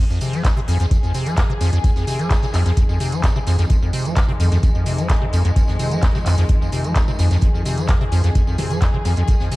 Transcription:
0.00 F2 D#3 G#4
0.10 F2, tambourine
0.21 C3, closed hi-hat, open hi-hat, tambourine
0.33 F3, closed hi-hat, tambourine
0.44 F2, kick, snare, clap, closed hi-hat, tambourine
0.57 C3, closed hi-hat
0.68 F2, closed hi-hat, open hi-hat, tambourine
0.80 F2, snare, closed hi-hat, tambourine
0.91 F2, kick, closed hi-hat, tambourine
1.03 F2, tambourine
1.14 C3, closed hi-hat, open hi-hat, tambourine
1.26 F3, closed hi-hat, tambourine
1.37 F2, kick, snare, clap, closed hi-hat, tambourine
1.50 C3
1.61 F2, closed hi-hat, open hi-hat, tambourine
1.73 F2, closed hi-hat, tambourine
1.84 F2, kick, closed hi-hat, tambourine
1.96 F2, snare, tambourine
2.07 C3, closed hi-hat, open hi-hat, tambourine
2.19 F3, closed hi-hat, tambourine
2.30 F2, kick, snare, clap, closed hi-hat, tambourine
2.42 C3, snare, tambourine
2.53 F2, clap, open hi-hat, tambourine
2.66 F2, snare, closed hi-hat, tambourine
2.77 F2, kick, closed hi-hat, tambourine
2.89 F2, tambourine
3.00 C3, closed hi-hat, open hi-hat, tambourine
3.12 F3, closed hi-hat, tambourine
3.23 F2, kick, snare, clap, closed hi-hat, tambourine
3.36 C3, tambourine
3.47 F2, snare, closed hi-hat, open hi-hat, tambourine
3.58 F2, snare, closed hi-hat, tambourine
3.69 F2 G#3, kick, closed hi-hat, tambourine
3.82 F2, tambourine
3.93 C3, closed hi-hat, open hi-hat, tambourine
4.05 F3, closed hi-hat, tambourine
4.16 F2, kick, snare, clap, closed hi-hat, tambourine
4.29 C3, closed hi-hat
4.40 F2, closed hi-hat, open hi-hat, tambourine
4.52 F2, snare, closed hi-hat, tambourine
4.63 F2, kick, closed hi-hat, tambourine
4.75 F2, tambourine
4.86 C3, closed hi-hat, open hi-hat, tambourine
4.98 F3, closed hi-hat, tambourine
5.09 F2, kick, snare, clap, closed hi-hat, tambourine
5.22 C3
5.33 F2, closed hi-hat, open hi-hat, tambourine
5.45 F2, closed hi-hat, tambourine
5.56 F2, kick, closed hi-hat, tambourine
5.68 F2, snare, tambourine
5.79 C3, closed hi-hat, open hi-hat, tambourine
5.91 F3, closed hi-hat, tambourine
6.02 F2, kick, snare, clap, closed hi-hat, tambourine
6.15 C3, snare, tambourine
6.26 F2, clap, open hi-hat, tambourine
6.37 F2, snare, closed hi-hat, tambourine
6.49 F2, kick, closed hi-hat, tambourine
6.61 F2, tambourine
6.72 C3, closed hi-hat, open hi-hat, tambourine
6.84 F3, closed hi-hat, tambourine
6.95 F2, kick, snare, clap, closed hi-hat, tambourine
7.08 C3, tambourine
7.19 F2, snare, closed hi-hat, open hi-hat, tambourine
7.31 F2, snare, closed hi-hat, tambourine
7.41 F2 G#4, kick, closed hi-hat, tambourine
7.54 F2, tambourine
7.65 C3, closed hi-hat, open hi-hat, tambourine
7.78 F3, closed hi-hat, tambourine
7.88 F2, kick, snare, clap, closed hi-hat, tambourine
8.01 C3, closed hi-hat
8.12 F2, closed hi-hat, open hi-hat, tambourine
8.24 F2, snare, closed hi-hat, tambourine
8.35 F2, kick, closed hi-hat, tambourine
8.47 F2, tambourine
8.58 C3, closed hi-hat, open hi-hat, mid tom, tambourine
8.71 F3, closed hi-hat, tambourine
8.81 F2, kick, snare, clap, closed hi-hat, tambourine
8.94 C3
9.05 F2, closed hi-hat, open hi-hat, tambourine
9.16 F2, closed hi-hat, tambourine
9.27 F2, kick, closed hi-hat, tambourine
9.40 F2, snare, tambourine
9.52 C3, closed hi-hat, open hi-hat, tambourine

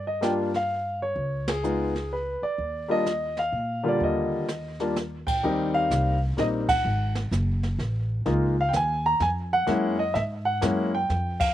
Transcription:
Already playing: G2
0.07 D#5
0.21 G3 A#3 D4 F4 G5, snare, hi-hat pedal
0.54 F5, snare
1.02 C#5
1.16 C#2, brush sweep, kick
1.48 G#4, snare, ride
1.63 G#3 B3 D#4 F4, hi-hat pedal
1.96 snare
2.13 B4
2.42 D5, muted upright bass stroke
2.58 D#2, brush sweep, kick
2.88 G3 A#3 D4 F4 D#5
3.06 snare, hi-hat pedal
3.37 F5, snare
3.52 A#2
3.83 D3 G3 A#3 F4
3.88 D5
4.00 D#2 D#5, brush sweep, kick
4.48 snare, hi-hat pedal
4.80 G3 A#3 D4 F4, snare
4.96 snare, hi-hat pedal
5.27 A#1 G5, kick, ride
5.43 D#2 G3 A#3 C4 D#4, brush sweep
5.74 F5
5.90 C2, kick, snare, hi-hat pedal
6.37 A#1 G3 A#3 C4 D#4 D#5, kick, snare
6.69 F#5, kick, crash
6.85 G#1, brush sweep
7.15 snare
7.31 F#1, kick, snare, hi-hat pedal
7.63 snare
7.78 A1, kick, snare
8.26 C#2 G#3 A#3 D#4 F4, brush sweep, kick, snare
8.61 F5
8.69 G5
8.73 D#2 G#5, kick, snare, hi-hat pedal
9.06 A#5
9.20 F2 G#5, kick, snare
9.53 F#5
9.67 F#2 G#3 A#3 C#4 E4, brush sweep, kick, snare
9.99 D#5
10.14 G#2 E5, kick, snare
10.45 F#5
10.61 F#2 G#3 A#3 C#4 E4, kick, snare, hi-hat pedal
10.95 G5
11.09 F2, brush sweep, kick, snare
11.40 F5, kick, crash

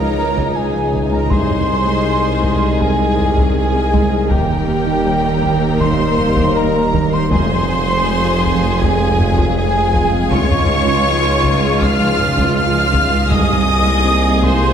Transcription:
Already playing: C#2 G#3 D#4 G#4 A#4 C#5 A#5, impact
0.00 F3
0.37 C#3, taiko
0.56 G#4 G#5
0.74 F3
0.93 C#3, taiko
1.11 G#3 A#4 A#5
1.30 C2 G#3 G#4 A#4 C5 D#5 C6, taiko
1.50 taiko low
1.67 D#4
1.86 G#3
2.05 C4
2.24 G#4
2.43 G#3, taiko
2.80 G#3 G#4 G#5, taiko
2.99 C4
3.19 taiko low
3.36 G#3, taiko
3.56 G#4 G#5
3.75 C4
3.94 G#3, taiko
4.13 D#4
4.29 D#1 D#2 D#3 G3 A#3 D#4 G4 A#4 G5, taiko
4.50 taiko low
4.68 A#3
4.87 D#3
5.05 G3
5.24 D#4
5.43 D#3, taiko
5.80 D#3 C5 C6, taiko
5.99 G3
6.18 taiko low
6.37 D#3, taiko
6.56 A#4 A#5
6.75 G3
6.94 D#3, taiko
7.12 A#3 C5 C6
7.31 F1 F2 F3 G#3 C4 F4 G#4 C5 F5 C6, taiko
7.50 taiko low
7.68 C4
7.88 F3
8.06 G#3
8.25 F4
8.44 F3, taiko
8.82 F3 G#4 G#5, taiko
9.00 G#3
9.19 taiko low
9.38 F3, taiko
9.57 G#4 G#5
9.75 G#3
9.94 F3, taiko
10.13 C4
10.31 C#2 C#3 D#4 F4 C#5 C#6, taiko
10.51 taiko low
10.69 G#3
10.87 C#3
11.06 F3
11.25 C#4
11.43 C#3, taiko
11.81 C#3 F5 F6, taiko
12.00 F3
12.20 taiko low
12.37 C#3, taiko
12.55 F5 F6
12.74 F3
12.93 C#3, taiko
13.12 G#3
13.30 C2 G#3 A#3 G#4 D#5 D#6, taiko
13.50 taiko low
13.68 D#4
13.87 G#3
14.05 C4
14.24 G#4
14.42 G#3 C5 C6, taiko

